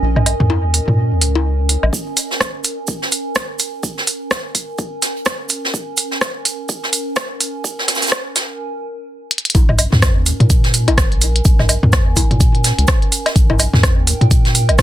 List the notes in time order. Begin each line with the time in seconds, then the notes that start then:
Already playing: C#4 A#4 D#5 G#5
0.02 A#1
0.16 mid tom, low woodblock
0.26 open hi-hat, low woodblock
0.40 F2, mid tom
0.50 cowbell
0.64 D#2
0.74 open hi-hat
0.88 A#2, mid tom
1.12 D#2
1.21 C#2, open hi-hat
1.35 cowbell
1.69 open hi-hat
1.83 A#1, low woodblock
1.93 kick, shaker
2.17 open hi-hat, shaker
2.31 snare
2.40 kick, cross-stick, snare, shaker
2.64 open hi-hat, shaker
2.87 kick, shaker
3.02 snare
3.12 open hi-hat, shaker
3.36 kick, cross-stick, snare, shaker
3.59 open hi-hat, shaker
3.83 kick, shaker
3.98 snare
4.07 open hi-hat, shaker
4.31 kick, cross-stick, snare, shaker
4.55 kick, open hi-hat, shaker
4.78 kick, shaker
5.02 snare, open hi-hat, shaker
5.16 closed hi-hat
5.26 kick, cross-stick, snare, shaker
5.49 open hi-hat, shaker
5.65 snare
5.74 kick, shaker
5.97 open hi-hat, shaker
6.11 snare
6.21 kick, cross-stick, snare, shaker
6.45 open hi-hat, shaker
6.69 kick, shaker
6.83 snare
6.93 open hi-hat, shaker
7.16 kick, cross-stick, snare, shaker
7.40 open hi-hat, shaker
7.64 kick, shaker
7.79 snare
7.88 snare, open hi-hat, shaker
7.95 snare, shaker
8.02 snare, open hi-hat, shaker
8.07 snare, shaker
8.12 kick, cross-stick, snare
8.36 kick, snare, open hi-hat, shaker
9.31 closed hi-hat
9.38 closed hi-hat
9.45 closed hi-hat
9.50 closed hi-hat
9.55 A#1 C#4, kick, closed hi-hat, cowbell, shaker
9.69 mid tom, low woodblock
9.75 A#4, open hi-hat, low woodblock, shaker
9.92 F2 G#5, snare, mid tom
10.02 kick, cross-stick, snare, closed hi-hat, shaker
10.16 D#2
10.26 open hi-hat, shaker
10.40 A#2, closed hi-hat, mid tom
10.50 kick, closed hi-hat, shaker
10.64 snare, closed hi-hat
10.74 open hi-hat, shaker
10.88 G#1, closed hi-hat, cowbell, low woodblock
10.98 kick, cross-stick, snare, closed hi-hat, shaker
11.12 A#1, closed hi-hat
11.21 open hi-hat, shaker
11.36 closed hi-hat
11.45 A#1, kick, closed hi-hat, shaker
11.59 snare, mid tom, low woodblock
11.69 open hi-hat, low woodblock, shaker
11.83 F2, mid tom
11.93 kick, cross-stick, snare, closed hi-hat, shaker
12.07 D#2
12.16 kick, open hi-hat, cowbell, shaker
12.31 A#2, closed hi-hat, mid tom
12.40 kick, closed hi-hat, shaker
12.55 closed hi-hat
12.64 snare, open hi-hat, shaker
12.78 C#2, closed hi-hat
12.88 kick, cross-stick, snare, closed hi-hat, shaker
13.02 closed hi-hat
13.12 open hi-hat, shaker
13.26 snare, closed hi-hat, low woodblock
13.36 A#1, kick, closed hi-hat, shaker
13.50 mid tom, cowbell, low woodblock
13.59 open hi-hat, low woodblock, shaker
13.73 F2 G5, snare, mid tom
13.83 kick, cross-stick, snare, closed hi-hat, shaker
13.97 D#2
14.07 open hi-hat, shaker
14.21 A#2, closed hi-hat, mid tom
14.31 kick, closed hi-hat, shaker
14.45 snare, closed hi-hat
14.55 open hi-hat, shaker
14.69 G#1, closed hi-hat, low woodblock
14.79 kick, cross-stick, snare, closed hi-hat, cowbell, shaker